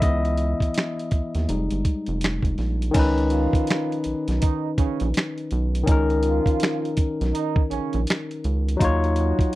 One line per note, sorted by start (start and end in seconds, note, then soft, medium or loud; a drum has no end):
0.00 0.55 C#2 medium
0.00 1.08 E3 medium
0.00 1.08 B3 soft
0.00 0.58 E4 medium
0.00 1.08 D#5 medium
0.00 0.57 E5 medium
0.00 kick medium
0.00 closed hi-hat medium
0.25 closed hi-hat soft
0.37 closed hi-hat medium
0.60 0.67 D#2 soft
0.60 kick medium
0.60 closed hi-hat soft
0.74 snare loud
0.74 closed hi-hat medium
0.79 finger snap medium
0.99 closed hi-hat soft
1.11 1.21 D#2 soft
1.11 kick medium
1.11 closed hi-hat medium
1.35 1.47 D#2 medium
1.35 snare soft
1.35 closed hi-hat soft
1.48 1.69 F1 loud
1.48 2.54 G3 soft
1.48 2.54 G#3 soft
1.48 2.55 D#4 soft
1.48 closed hi-hat medium
1.71 1.84 G1 medium
1.71 closed hi-hat soft
1.85 kick medium
1.85 closed hi-hat medium
2.06 2.40 F1 medium
2.06 closed hi-hat soft
2.21 snare loud
2.21 closed hi-hat medium
2.25 finger snap medium
2.43 2.56 F1 medium
2.43 kick medium
2.43 closed hi-hat soft
2.58 2.90 A#1 medium
2.58 snare soft
2.58 open hi-hat soft
2.82 closed hi-hat medium
2.91 5.81 D#3 medium
2.91 5.83 C#4 medium
2.91 kick loud
2.91 closed hi-hat medium
2.91 crash loud
2.95 3.47 C#2 loud
2.95 5.84 D#4 medium
2.95 5.86 B4 medium
3.18 closed hi-hat soft
3.30 4.00 F3 medium
3.30 4.00 F4 medium
3.30 closed hi-hat medium
3.53 kick medium
3.53 closed hi-hat soft
3.67 snare loud
3.67 closed hi-hat medium
3.71 finger snap medium
3.92 closed hi-hat soft
4.04 4.14 B1 soft
4.04 closed hi-hat medium
4.28 4.40 B1 medium
4.28 snare soft
4.28 closed hi-hat soft
4.41 4.70 D#3 medium
4.41 4.70 D#4 medium
4.41 kick medium
4.41 closed hi-hat medium
4.77 4.87 A#1 soft
4.77 5.07 C#3 medium
4.77 5.07 C#4 medium
4.77 kick medium
4.77 closed hi-hat medium
5.00 5.13 A#1 loud
5.00 closed hi-hat soft
5.14 snare loud
5.14 closed hi-hat medium
5.18 finger snap medium
5.38 closed hi-hat soft
5.51 5.84 B1 loud
5.51 closed hi-hat medium
5.75 closed hi-hat medium
5.83 8.74 D#3 medium
5.83 8.75 C#4 medium
5.87 6.40 C#2 loud
5.87 8.77 D#4 medium
5.87 kick loud
5.87 closed hi-hat medium
5.92 8.78 A#4 loud
6.10 closed hi-hat soft
6.23 6.93 F3 medium
6.23 6.93 F4 medium
6.23 closed hi-hat medium
6.46 kick medium
6.46 closed hi-hat soft
6.60 snare loud
6.60 closed hi-hat medium
6.64 finger snap medium
6.85 closed hi-hat soft
6.97 7.07 B1 medium
6.97 kick medium
6.97 closed hi-hat medium
7.21 7.33 B1 medium
7.21 snare soft
7.21 closed hi-hat soft
7.33 7.63 D#3 medium
7.33 7.63 D#4 medium
7.33 closed hi-hat medium
7.56 kick loud
7.70 7.80 A#1 medium
7.70 8.00 C#3 medium
7.70 8.00 C#4 medium
7.70 closed hi-hat medium
7.93 8.06 A#1 medium
7.93 closed hi-hat soft
8.07 snare loud
8.07 closed hi-hat medium
8.11 finger snap loud
8.31 closed hi-hat soft
8.44 8.77 C#2 medium
8.44 closed hi-hat medium
8.69 closed hi-hat medium
8.77 9.55 F#3 medium
8.77 9.55 D#4 medium
8.77 kick loud
8.81 9.33 D#2 loud
8.81 9.55 F4 medium
8.81 9.55 C#5 loud
8.81 closed hi-hat medium
9.04 closed hi-hat soft
9.16 9.55 F#3 medium
9.16 9.55 F#4 medium
9.16 closed hi-hat medium
9.39 kick medium
9.39 closed hi-hat soft